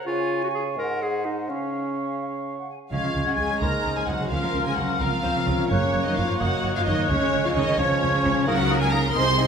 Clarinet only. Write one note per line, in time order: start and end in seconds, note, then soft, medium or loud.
0.06 0.41 F4 medium
0.44 0.49 F#4 medium
0.54 0.65 G#4 medium
0.78 1.03 A#4 medium
1.02 1.27 G#4 medium
1.25 1.51 D#4 soft
1.49 2.68 C#4 soft
2.93 3.63 C#4 soft
3.62 4.31 D#4 soft
4.32 5.03 C#4 soft
5.01 5.71 C4 soft
5.71 7.07 A#3 medium
7.10 7.77 C#4 medium
7.79 8.46 C#4 medium
8.47 8.57 D#4 medium
8.70 8.80 D#4 medium
8.93 9.03 D#4 medium
9.15 9.25 D#4 medium
9.38 9.47 D#4 medium